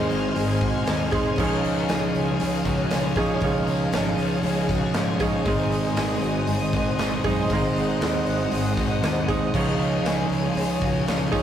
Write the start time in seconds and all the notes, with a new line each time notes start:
Already playing: G#2 D#3 G#3 C4 D#4 G#4 C5 D#5 G#5 F6
0.10 G#1 F#4, open hi-hat
0.33 G#1 G#2 D#3 G#3 G#4, open hi-hat
0.59 D#3 G#3 F#4, kick, open hi-hat
0.84 G#2 D#3 G#3 F4, snare, open hi-hat
0.88 D#2
1.11 G#3 C4 D#4 G#4, kick, open hi-hat
1.36 C#2 C#3 F3 G#3 C#4 D#4 A#4 C#5 F5 D#6, kick, tambourine, crash
1.41 G#4
1.52 tambourine
1.64 C#2, open hi-hat, tambourine
1.75 snare, tambourine
1.87 C#3 G#3 C#4 G#4, snare, open hi-hat, tambourine
1.91 C#2
2.02 tambourine
2.15 C#2 F4, open hi-hat
2.37 C#3 G#3 C#4 G#4, open hi-hat, tambourine
2.42 C#2
2.64 C#2 G#3 C#4 F#4, kick, open hi-hat, tambourine
2.87 C#3 G#3 C#4 F4, open hi-hat, tambourine
2.91 C#2, snare
3.16 A#2 F3 C#4 D#4 G#4, kick, open hi-hat, tambourine
3.20 C#3
3.28 tambourine
3.39 C#2 C#3 G#3 A#4, kick, open hi-hat, tambourine
3.43 F3 C#4 D#4 G#4
3.55 tambourine
3.66 C#2, open hi-hat, tambourine
3.81 tambourine
3.91 G#1 C#3 G#3 C#4 G#4, snare, open hi-hat, tambourine
4.06 tambourine
4.18 C#2 F4, open hi-hat
4.42 C#2 C#3 G#3 C#4 G#4, open hi-hat, tambourine
4.68 C#4 F#4, kick, open hi-hat, tambourine
4.72 G#3
4.94 G#2 C#3 G#3 C#4 F4, snare, open hi-hat, tambourine
5.20 F3 C#4 D#4 G#4, kick, open hi-hat, tambourine
5.24 C#3
5.33 tambourine
5.43 G#1 G#2 D#3 G#3 C4 A#4 C5 D#5 G#5, kick, open hi-hat, tambourine
5.48 D#4 G#4
5.58 tambourine
5.70 G#1, open hi-hat, tambourine
5.86 snare
5.94 G#1 G#2 D#3 G#4, snare, open hi-hat, tambourine
5.99 G#3
6.11 tambourine
6.21 G#1 F#4, open hi-hat
6.47 G#1 G#2 D#3 G#3 G#4, open hi-hat, tambourine
6.73 G#1 G#3 F#4, kick, open hi-hat, tambourine
6.77 D#3
6.98 G#1 G#2 D#3 G#3 F4, snare, open hi-hat, tambourine
7.24 F#2 C4 D#4 G#4, kick, open hi-hat, tambourine
7.28 G#3
7.48 G#1 G#2 D#3 G#3 A#4 F#5, kick, open hi-hat
7.52 G#3 C4 D#4 G#4, tambourine
7.67 tambourine
7.75 G#1, open hi-hat, tambourine
7.89 snare, tambourine
8.01 D#2 G#2 D#3 G#3 G#4, snare, open hi-hat, tambourine
8.26 G#1 F#4, open hi-hat
8.30 tambourine
8.42 tambourine
8.50 G#1 G#2 D#3 G#4, open hi-hat
8.54 G#3, tambourine
8.68 tambourine
8.77 G#3 F#4, kick, open hi-hat, tambourine
8.81 D#3
8.92 tambourine
9.02 D#2 G#2 D#3 F4, snare, open hi-hat, tambourine
9.07 G#3
9.18 tambourine
9.28 G#3 C4 D#4 G#4, kick, open hi-hat, tambourine
9.45 tambourine
9.52 C#2 C#3 F3 G#3 C#4 A#4 F5 G#5, kick, crash
9.56 D#4 G#4 C#5, tambourine
9.71 tambourine
9.78 C#2, open hi-hat
9.82 tambourine
9.96 tambourine
10.03 C#2 C#3 G#3 G#4, snare, open hi-hat
10.08 C#4, tambourine
10.23 tambourine
10.30 C#2 F4, open hi-hat
10.54 C#2 C#3 G#3 C#4 G#4, open hi-hat
10.59 tambourine
10.81 C#2 C#4 F#4, kick, open hi-hat, tambourine
10.85 G#3
11.06 C#2 C#3 G#3 F4, snare, open hi-hat, tambourine
11.11 C#4
11.31 A#2 F3 C#4 D#4 G#4, kick, open hi-hat
11.35 C#3, tambourine